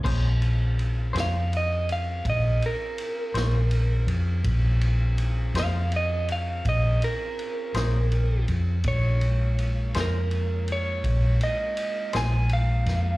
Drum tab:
CC |x-----------|------------|------------|
RD |-xxxxxxxxxxx|xxxxxxxxxxxx|xxxxxxxxxxxx|
SD |---o-----o--|---o-----o--|---o-----o-o|
BD |o-----o-----|o-----o-----|o-----o-----|